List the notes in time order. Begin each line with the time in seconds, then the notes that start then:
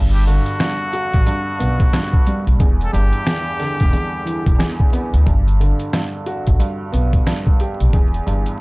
Already playing: G1 G2
0.13 G4, closed hi-hat
0.27 D3 F#4, closed hi-hat
0.46 closed hi-hat
0.60 G2, cross-stick, snare, closed hi-hat
0.93 F#4, closed hi-hat
1.13 A1, kick, closed hi-hat
1.26 G2, closed hi-hat
1.59 B1 B3, closed hi-hat
1.80 kick, closed hi-hat
1.93 G2, cross-stick, snare, closed hi-hat
2.13 kick
2.27 G3, closed hi-hat
2.47 B1, closed hi-hat
2.60 E1 E2, kick, closed hi-hat
2.81 A4, closed hi-hat
2.93 G1 G2 G4, closed hi-hat
3.13 closed hi-hat
3.27 E2, cross-stick, snare, closed hi-hat
3.59 D3, snare, closed hi-hat
3.80 E1, kick, closed hi-hat
3.93 E2, closed hi-hat
4.26 E3, closed hi-hat
4.46 E1, kick, closed hi-hat
4.58 E2, cross-stick, snare, closed hi-hat
4.80 kick
4.93 B3, closed hi-hat
5.14 D2, closed hi-hat
5.26 G1 G2, kick, closed hi-hat
5.48 closed hi-hat
5.60 D3, closed hi-hat
5.79 closed hi-hat
5.93 G2, cross-stick, snare, closed hi-hat
6.26 F#4, closed hi-hat
6.47 A1, kick, closed hi-hat
6.59 G2, closed hi-hat
6.92 B1 B3, closed hi-hat
7.13 kick, closed hi-hat
7.26 G2, cross-stick, snare, closed hi-hat
7.47 kick
7.60 G4, closed hi-hat
7.80 B1, closed hi-hat
7.93 E1 E2, kick, closed hi-hat
8.14 closed hi-hat
8.26 G1 G2, closed hi-hat
8.46 closed hi-hat